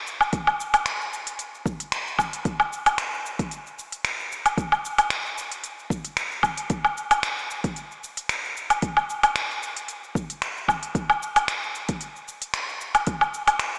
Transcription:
0.07 cabasa medium
0.21 cabasa soft
0.21 low woodblock medium
0.33 kick loud
0.33 closed hi-hat soft
0.33 cabasa soft
0.47 cabasa soft
0.47 low woodblock medium
0.60 cabasa medium
0.74 closed hi-hat medium
0.74 cabasa soft
0.74 low woodblock medium
0.86 finger snap medium
0.86 closed hi-hat soft
0.86 cabasa soft
1.01 cabasa soft
1.13 cabasa medium
1.27 closed hi-hat medium
1.27 cabasa soft
1.39 closed hi-hat soft
1.39 cabasa soft
1.55 cabasa soft
1.66 kick loud
1.66 cabasa medium
1.80 closed hi-hat medium
1.80 cabasa soft
1.92 finger snap medium
1.92 closed hi-hat soft
1.92 cabasa soft
2.08 cabasa soft
2.19 kick medium
2.19 cabasa medium
2.19 low woodblock medium
2.33 closed hi-hat medium
2.33 cabasa soft
2.45 kick loud
2.45 closed hi-hat soft
2.45 cabasa soft
2.60 cabasa soft
2.60 low woodblock medium
2.73 cabasa medium
2.86 closed hi-hat medium
2.86 cabasa soft
2.86 low woodblock medium
2.98 finger snap loud
2.98 closed hi-hat soft
2.98 cabasa soft
3.14 cabasa soft
3.26 cabasa medium
3.39 kick loud
3.39 closed hi-hat medium
3.39 cabasa soft
3.51 closed hi-hat soft
3.51 cabasa soft
3.67 cabasa soft
3.79 cabasa medium
3.92 closed hi-hat medium
3.92 cabasa soft
4.05 finger snap medium
4.05 closed hi-hat soft
4.05 cabasa soft
4.20 cabasa soft
4.32 cabasa medium
4.46 closed hi-hat medium
4.46 cabasa soft
4.46 low woodblock medium
4.58 kick loud
4.58 closed hi-hat soft
4.58 cabasa soft
4.72 cabasa soft
4.72 low woodblock medium
4.85 cabasa medium
4.98 closed hi-hat medium
4.98 cabasa soft
4.98 low woodblock medium
5.10 finger snap medium
5.10 closed hi-hat soft
5.10 cabasa soft
5.26 cabasa soft
5.38 cabasa medium
5.52 closed hi-hat medium
5.52 cabasa soft
5.64 closed hi-hat soft
5.64 cabasa soft
5.79 cabasa soft
5.90 kick loud
5.90 cabasa medium
6.05 closed hi-hat medium
6.05 cabasa soft
6.17 finger snap medium
6.17 closed hi-hat soft
6.17 cabasa soft
6.32 cabasa soft
6.43 kick medium
6.43 cabasa medium
6.43 low woodblock medium
6.57 closed hi-hat medium
6.57 cabasa soft
6.70 kick loud
6.70 closed hi-hat soft
6.70 cabasa soft
6.85 cabasa soft
6.85 low woodblock medium
6.98 cabasa medium
7.11 closed hi-hat medium
7.11 cabasa soft
7.11 low woodblock medium
7.23 finger snap medium
7.23 closed hi-hat soft
7.23 cabasa soft
7.39 cabasa soft
7.51 cabasa medium
7.64 kick loud
7.64 closed hi-hat soft
7.64 cabasa soft
7.76 closed hi-hat soft
7.76 cabasa soft
7.91 cabasa soft
8.04 cabasa medium
8.17 closed hi-hat medium
8.17 cabasa soft
8.29 finger snap medium
8.29 closed hi-hat soft
8.29 cabasa soft
8.45 cabasa soft
8.57 cabasa medium
8.70 closed hi-hat soft
8.70 cabasa soft
8.70 low woodblock medium
8.82 kick loud
8.82 closed hi-hat soft
8.82 cabasa soft
8.97 cabasa soft
8.97 low woodblock medium
9.10 cabasa medium
9.23 closed hi-hat medium
9.23 cabasa soft
9.23 low woodblock medium
9.36 finger snap medium
9.36 closed hi-hat soft
9.36 cabasa soft
9.51 cabasa soft
9.63 cabasa medium
9.77 closed hi-hat soft
9.77 cabasa soft
9.88 closed hi-hat soft
9.88 cabasa soft
10.04 cabasa soft
10.15 kick loud
10.15 cabasa medium
10.30 closed hi-hat medium
10.30 cabasa soft
10.42 finger snap medium
10.42 closed hi-hat soft
10.42 cabasa soft
10.57 cabasa soft
10.68 kick medium
10.68 cabasa medium
10.68 low woodblock medium
10.83 closed hi-hat medium
10.83 cabasa soft
10.95 kick loud
10.95 closed hi-hat soft
10.95 cabasa soft
11.10 cabasa soft
11.10 low woodblock medium
11.23 cabasa medium
11.36 closed hi-hat medium
11.36 cabasa soft
11.36 low woodblock medium
11.48 finger snap medium
11.48 closed hi-hat soft
11.48 cabasa soft
11.63 cabasa soft
11.75 cabasa medium
11.89 kick loud
11.89 closed hi-hat medium
11.89 cabasa soft
12.01 closed hi-hat soft
12.01 cabasa soft
12.16 cabasa soft
12.28 cabasa medium
12.42 closed hi-hat medium
12.42 cabasa soft
12.54 finger snap medium
12.54 closed hi-hat soft
12.54 cabasa soft
12.69 cabasa soft
12.81 cabasa medium
12.95 closed hi-hat medium
12.95 cabasa soft
12.95 low woodblock medium
13.07 kick loud
13.07 closed hi-hat soft
13.07 cabasa soft
13.21 cabasa soft
13.21 low woodblock medium
13.34 cabasa medium
13.48 closed hi-hat medium
13.48 cabasa soft
13.48 low woodblock medium
13.60 finger snap medium
13.60 closed hi-hat soft
13.60 cabasa soft
13.75 cabasa soft

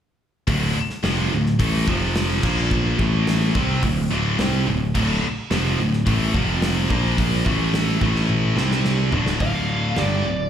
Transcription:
0.47 0.73 D1 medium
0.47 0.74 D2 loud
0.47 0.75 A2 medium
0.47 0.75 D3 loud
0.47 kick loud
0.47 open hi-hat medium
0.75 muted distorted electric guitar stroke medium
0.75 muted picked electric bass stroke soft
0.90 snare soft
1.03 1.29 F1 medium
1.03 1.30 F2 medium
1.03 1.30 C3 medium
1.03 1.31 F3 loud
1.03 snare loud
1.03 open hi-hat medium
1.31 1.58 D1 medium
1.31 1.54 D2 medium
1.31 1.54 A2 medium
1.46 snare soft
1.59 1.85 A1 medium
1.59 1.86 A2 loud
1.59 1.87 E3 medium
1.59 1.86 A3 loud
1.59 kick loud
1.59 open hi-hat medium
1.88 2.39 F1 medium
1.88 2.42 F2 loud
1.88 2.43 C3 loud
1.88 2.42 F3 loud
1.88 kick loud
2.15 snare loud
2.15 open hi-hat medium
2.43 2.95 A#1 loud
2.43 2.99 A#2 medium
2.43 3.00 F3 loud
2.43 3.00 A#3 loud
2.43 kick loud
2.43 crash loud
2.71 kick loud
2.99 3.51 A1 medium
2.99 3.54 A2 medium
2.99 3.54 E3 medium
2.99 3.54 A3 loud
2.99 kick loud
3.27 snare loud
3.27 open hi-hat medium
3.54 3.81 C2 medium
3.54 3.82 C3 medium
3.54 3.82 G3 loud
3.54 3.82 C4 loud
3.54 kick loud
3.83 4.09 D1 medium
3.83 4.05 D2 medium
3.83 4.06 A2 medium
3.83 kick loud
3.83 open hi-hat medium
4.11 4.37 D1 loud
4.11 4.38 D2 loud
4.11 4.38 A2 medium
4.11 4.38 D3 loud
4.38 4.65 C2 loud
4.38 4.66 C3 medium
4.38 4.66 G3 medium
4.38 4.66 C4 loud
4.38 snare loud
4.38 open hi-hat medium
4.67 4.93 D1 medium
4.67 4.89 D2 medium
4.67 4.89 A2 medium
4.95 5.21 D1 medium
4.95 5.21 D2 loud
4.95 5.22 A2 loud
4.95 5.22 D3 loud
4.95 kick loud
4.95 crash medium
5.23 muted distorted electric guitar stroke medium
5.23 muted picked electric bass stroke soft
5.51 5.77 F1 loud
5.51 5.78 F2 medium
5.51 5.78 C3 loud
5.51 5.78 F3 loud
5.51 snare loud
5.51 open hi-hat medium
5.78 6.05 D1 medium
5.78 6.01 D2 medium
5.78 6.01 A2 medium
5.93 snare soft
6.06 6.32 A1 medium
6.06 6.33 A2 medium
6.06 6.33 E3 medium
6.06 6.34 A3 loud
6.06 kick loud
6.06 open hi-hat medium
6.34 6.86 F1 loud
6.34 6.89 F2 loud
6.34 6.89 C3 loud
6.34 6.88 F3 loud
6.34 kick loud
6.62 snare loud
6.62 open hi-hat medium
6.90 7.42 A#1 loud
6.90 7.45 A#2 medium
6.90 7.45 F3 medium
6.90 7.45 A#3 loud
6.90 kick loud
7.18 kick loud
7.18 open hi-hat medium
7.45 7.98 A1 medium
7.45 8.00 A2 medium
7.45 8.01 E3 medium
7.45 8.01 A3 loud
7.45 kick loud
7.74 snare loud
7.74 open hi-hat medium
8.01 8.53 A1 medium
8.01 8.56 A2 medium
8.01 8.56 E3 medium
8.01 8.57 A3 loud
8.01 kick loud
8.16 snare soft
8.29 high tom medium
8.56 9.09 C2 loud
8.56 9.12 C3 medium
8.56 9.12 G3 loud
8.56 9.12 C4 loud
8.56 snare medium
8.71 snare medium
8.85 snare medium
9.12 9.38 D1 medium
9.12 9.39 D2 medium
9.12 9.39 A2 medium
9.12 9.40 D3 loud
9.12 floor tom loud
9.26 snare medium
9.40 9.93 D1 medium
9.40 9.96 D2 medium
9.40 9.96 A2 medium
9.40 9.96 D3 medium
9.40 9.99 F5 loud
9.40 kick loud
9.40 open hi-hat soft
9.96 10.22 G1 medium
9.96 10.24 G2 medium
9.96 10.24 D3 medium
9.96 10.24 G3 loud
9.96 10.50 D5 medium
9.96 snare loud
9.96 open hi-hat soft
10.25 10.50 D1 medium
10.25 10.47 D2 medium
10.25 10.48 A2 medium

